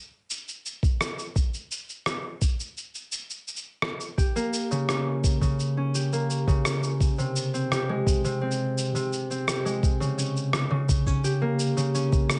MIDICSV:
0, 0, Header, 1, 3, 480
1, 0, Start_track
1, 0, Tempo, 705882
1, 926, Time_signature, 4, 2, 24, 8
1, 8427, End_track
2, 0, Start_track
2, 0, Title_t, "Harp"
2, 0, Program_c, 0, 46
2, 2839, Note_on_c, 0, 67, 70
2, 2963, Note_on_c, 0, 58, 95
2, 3203, Note_on_c, 0, 49, 90
2, 3325, Note_on_c, 0, 61, 77
2, 3672, Note_off_c, 0, 49, 0
2, 3680, Note_on_c, 0, 49, 94
2, 3923, Note_off_c, 0, 61, 0
2, 3925, Note_on_c, 0, 61, 77
2, 4043, Note_off_c, 0, 67, 0
2, 4046, Note_on_c, 0, 67, 70
2, 4163, Note_off_c, 0, 58, 0
2, 4166, Note_on_c, 0, 58, 94
2, 4395, Note_off_c, 0, 49, 0
2, 4403, Note_on_c, 0, 49, 89
2, 4522, Note_off_c, 0, 61, 0
2, 4524, Note_on_c, 0, 61, 65
2, 4800, Note_off_c, 0, 49, 0
2, 4884, Note_on_c, 0, 48, 90
2, 4924, Note_off_c, 0, 61, 0
2, 5126, Note_on_c, 0, 60, 68
2, 5243, Note_off_c, 0, 67, 0
2, 5246, Note_on_c, 0, 67, 77
2, 5367, Note_on_c, 0, 56, 93
2, 5408, Note_off_c, 0, 67, 0
2, 5598, Note_off_c, 0, 48, 0
2, 5606, Note_on_c, 0, 48, 94
2, 5720, Note_off_c, 0, 60, 0
2, 5722, Note_on_c, 0, 60, 81
2, 6075, Note_off_c, 0, 48, 0
2, 6084, Note_on_c, 0, 48, 98
2, 6325, Note_off_c, 0, 60, 0
2, 6327, Note_on_c, 0, 60, 64
2, 6352, Note_off_c, 0, 58, 0
2, 6446, Note_on_c, 0, 67, 70
2, 6556, Note_off_c, 0, 56, 0
2, 6564, Note_on_c, 0, 56, 92
2, 6605, Note_off_c, 0, 67, 0
2, 6720, Note_off_c, 0, 48, 0
2, 6720, Note_off_c, 0, 56, 0
2, 6802, Note_on_c, 0, 49, 90
2, 6843, Note_off_c, 0, 60, 0
2, 6920, Note_on_c, 0, 61, 66
2, 7271, Note_off_c, 0, 49, 0
2, 7279, Note_on_c, 0, 49, 99
2, 7523, Note_off_c, 0, 61, 0
2, 7525, Note_on_c, 0, 61, 74
2, 7644, Note_on_c, 0, 67, 81
2, 7763, Note_on_c, 0, 58, 97
2, 7993, Note_off_c, 0, 49, 0
2, 8001, Note_on_c, 0, 49, 93
2, 8119, Note_off_c, 0, 61, 0
2, 8122, Note_on_c, 0, 61, 74
2, 8427, Note_off_c, 0, 49, 0
2, 8427, Note_off_c, 0, 58, 0
2, 8427, Note_off_c, 0, 61, 0
2, 8427, Note_off_c, 0, 67, 0
2, 8427, End_track
3, 0, Start_track
3, 0, Title_t, "Drums"
3, 208, Note_on_c, 9, 69, 79
3, 276, Note_off_c, 9, 69, 0
3, 328, Note_on_c, 9, 69, 35
3, 396, Note_off_c, 9, 69, 0
3, 448, Note_on_c, 9, 69, 44
3, 516, Note_off_c, 9, 69, 0
3, 564, Note_on_c, 9, 36, 103
3, 568, Note_on_c, 9, 69, 29
3, 632, Note_off_c, 9, 36, 0
3, 636, Note_off_c, 9, 69, 0
3, 685, Note_on_c, 9, 37, 79
3, 689, Note_on_c, 9, 69, 75
3, 753, Note_off_c, 9, 37, 0
3, 757, Note_off_c, 9, 69, 0
3, 808, Note_on_c, 9, 69, 34
3, 876, Note_off_c, 9, 69, 0
3, 923, Note_on_c, 9, 36, 108
3, 927, Note_on_c, 9, 69, 43
3, 991, Note_off_c, 9, 36, 0
3, 995, Note_off_c, 9, 69, 0
3, 1046, Note_on_c, 9, 69, 31
3, 1114, Note_off_c, 9, 69, 0
3, 1168, Note_on_c, 9, 69, 75
3, 1236, Note_off_c, 9, 69, 0
3, 1286, Note_on_c, 9, 69, 29
3, 1354, Note_off_c, 9, 69, 0
3, 1402, Note_on_c, 9, 37, 65
3, 1406, Note_on_c, 9, 69, 36
3, 1470, Note_off_c, 9, 37, 0
3, 1474, Note_off_c, 9, 69, 0
3, 1643, Note_on_c, 9, 36, 95
3, 1644, Note_on_c, 9, 69, 77
3, 1711, Note_off_c, 9, 36, 0
3, 1712, Note_off_c, 9, 69, 0
3, 1768, Note_on_c, 9, 69, 33
3, 1836, Note_off_c, 9, 69, 0
3, 1886, Note_on_c, 9, 69, 39
3, 1954, Note_off_c, 9, 69, 0
3, 2005, Note_on_c, 9, 69, 29
3, 2073, Note_off_c, 9, 69, 0
3, 2124, Note_on_c, 9, 69, 80
3, 2192, Note_off_c, 9, 69, 0
3, 2246, Note_on_c, 9, 69, 35
3, 2314, Note_off_c, 9, 69, 0
3, 2366, Note_on_c, 9, 69, 43
3, 2424, Note_off_c, 9, 69, 0
3, 2424, Note_on_c, 9, 69, 30
3, 2492, Note_off_c, 9, 69, 0
3, 2599, Note_on_c, 9, 37, 72
3, 2667, Note_off_c, 9, 37, 0
3, 2723, Note_on_c, 9, 69, 31
3, 2791, Note_off_c, 9, 69, 0
3, 2842, Note_on_c, 9, 36, 109
3, 2846, Note_on_c, 9, 69, 44
3, 2910, Note_off_c, 9, 36, 0
3, 2914, Note_off_c, 9, 69, 0
3, 2968, Note_on_c, 9, 69, 31
3, 3036, Note_off_c, 9, 69, 0
3, 3085, Note_on_c, 9, 69, 73
3, 3153, Note_off_c, 9, 69, 0
3, 3206, Note_on_c, 9, 69, 31
3, 3274, Note_off_c, 9, 69, 0
3, 3323, Note_on_c, 9, 37, 61
3, 3327, Note_on_c, 9, 69, 38
3, 3391, Note_off_c, 9, 37, 0
3, 3395, Note_off_c, 9, 69, 0
3, 3563, Note_on_c, 9, 36, 96
3, 3566, Note_on_c, 9, 69, 74
3, 3631, Note_off_c, 9, 36, 0
3, 3634, Note_off_c, 9, 69, 0
3, 3683, Note_on_c, 9, 36, 55
3, 3687, Note_on_c, 9, 69, 30
3, 3751, Note_off_c, 9, 36, 0
3, 3755, Note_off_c, 9, 69, 0
3, 3806, Note_on_c, 9, 69, 40
3, 3874, Note_off_c, 9, 69, 0
3, 4046, Note_on_c, 9, 69, 77
3, 4114, Note_off_c, 9, 69, 0
3, 4168, Note_on_c, 9, 69, 31
3, 4236, Note_off_c, 9, 69, 0
3, 4287, Note_on_c, 9, 69, 44
3, 4355, Note_off_c, 9, 69, 0
3, 4403, Note_on_c, 9, 36, 97
3, 4407, Note_on_c, 9, 69, 27
3, 4471, Note_off_c, 9, 36, 0
3, 4475, Note_off_c, 9, 69, 0
3, 4522, Note_on_c, 9, 37, 69
3, 4527, Note_on_c, 9, 69, 68
3, 4590, Note_off_c, 9, 37, 0
3, 4595, Note_off_c, 9, 69, 0
3, 4646, Note_on_c, 9, 69, 34
3, 4714, Note_off_c, 9, 69, 0
3, 4763, Note_on_c, 9, 36, 100
3, 4767, Note_on_c, 9, 69, 41
3, 4831, Note_off_c, 9, 36, 0
3, 4835, Note_off_c, 9, 69, 0
3, 4888, Note_on_c, 9, 69, 29
3, 4956, Note_off_c, 9, 69, 0
3, 5007, Note_on_c, 9, 69, 75
3, 5075, Note_off_c, 9, 69, 0
3, 5130, Note_on_c, 9, 69, 27
3, 5198, Note_off_c, 9, 69, 0
3, 5248, Note_on_c, 9, 37, 62
3, 5252, Note_on_c, 9, 69, 37
3, 5316, Note_off_c, 9, 37, 0
3, 5320, Note_off_c, 9, 69, 0
3, 5485, Note_on_c, 9, 36, 97
3, 5492, Note_on_c, 9, 69, 73
3, 5553, Note_off_c, 9, 36, 0
3, 5560, Note_off_c, 9, 69, 0
3, 5609, Note_on_c, 9, 69, 31
3, 5677, Note_off_c, 9, 69, 0
3, 5789, Note_on_c, 9, 69, 39
3, 5857, Note_off_c, 9, 69, 0
3, 5971, Note_on_c, 9, 69, 76
3, 6039, Note_off_c, 9, 69, 0
3, 6091, Note_on_c, 9, 69, 31
3, 6159, Note_off_c, 9, 69, 0
3, 6208, Note_on_c, 9, 69, 42
3, 6276, Note_off_c, 9, 69, 0
3, 6331, Note_on_c, 9, 69, 27
3, 6399, Note_off_c, 9, 69, 0
3, 6445, Note_on_c, 9, 37, 67
3, 6450, Note_on_c, 9, 69, 70
3, 6513, Note_off_c, 9, 37, 0
3, 6518, Note_off_c, 9, 69, 0
3, 6571, Note_on_c, 9, 69, 32
3, 6639, Note_off_c, 9, 69, 0
3, 6685, Note_on_c, 9, 36, 100
3, 6689, Note_on_c, 9, 69, 41
3, 6753, Note_off_c, 9, 36, 0
3, 6757, Note_off_c, 9, 69, 0
3, 6811, Note_on_c, 9, 69, 30
3, 6879, Note_off_c, 9, 69, 0
3, 6929, Note_on_c, 9, 69, 71
3, 6997, Note_off_c, 9, 69, 0
3, 7049, Note_on_c, 9, 69, 29
3, 7117, Note_off_c, 9, 69, 0
3, 7162, Note_on_c, 9, 37, 68
3, 7166, Note_on_c, 9, 69, 35
3, 7230, Note_off_c, 9, 37, 0
3, 7234, Note_off_c, 9, 69, 0
3, 7405, Note_on_c, 9, 36, 96
3, 7407, Note_on_c, 9, 69, 68
3, 7473, Note_off_c, 9, 36, 0
3, 7475, Note_off_c, 9, 69, 0
3, 7525, Note_on_c, 9, 36, 53
3, 7527, Note_on_c, 9, 69, 31
3, 7593, Note_off_c, 9, 36, 0
3, 7595, Note_off_c, 9, 69, 0
3, 7647, Note_on_c, 9, 69, 38
3, 7715, Note_off_c, 9, 69, 0
3, 7885, Note_on_c, 9, 69, 66
3, 7953, Note_off_c, 9, 69, 0
3, 8007, Note_on_c, 9, 69, 32
3, 8075, Note_off_c, 9, 69, 0
3, 8127, Note_on_c, 9, 69, 40
3, 8195, Note_off_c, 9, 69, 0
3, 8245, Note_on_c, 9, 36, 91
3, 8245, Note_on_c, 9, 69, 28
3, 8313, Note_off_c, 9, 36, 0
3, 8313, Note_off_c, 9, 69, 0
3, 8361, Note_on_c, 9, 37, 73
3, 8365, Note_on_c, 9, 69, 72
3, 8427, Note_off_c, 9, 37, 0
3, 8427, Note_off_c, 9, 69, 0
3, 8427, End_track
0, 0, End_of_file